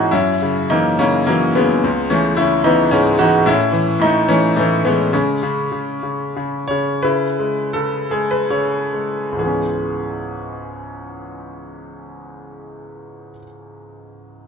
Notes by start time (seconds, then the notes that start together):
Already playing: G#2 E3 G#3 A3 B3 C#4 D#4 E4 F#4 G#4
0.11 F#2 C#4 E4
0.42 C#3
0.70 E3 A#3 D#4
0.99 C#3 A#3 C#4
1.27 E3 F#3 A#3
1.55 C#3 G#3 B3
1.84 C#2
2.10 E3 A3 C#4
2.37 C#3 C#4 E4
2.64 E3 B3 D#4
2.91 G#2 G#3 C#4
3.19 E3 D#4 F#4
3.46 A2 C#4 E4
3.72 E3
3.99 A2 A3 D#4
4.28 E3 A3 C#4
4.56 A2 E3 A3
4.85 E3 G#3 B3
5.13 C#3 G#3 C#4
5.43 C#3
5.72 C#3
6.03 C#3
6.36 C#3
6.68 C#3 C#5
7.03 C#3 E4 B4
7.39 G#3
7.73 C#3 A4
8.11 G#3 G#4
8.31 B4
8.50 C#3 C#5
8.93 G#3
9.32 C#2 G#2
9.38 E3 G#3 G#4
9.45 B3 C#4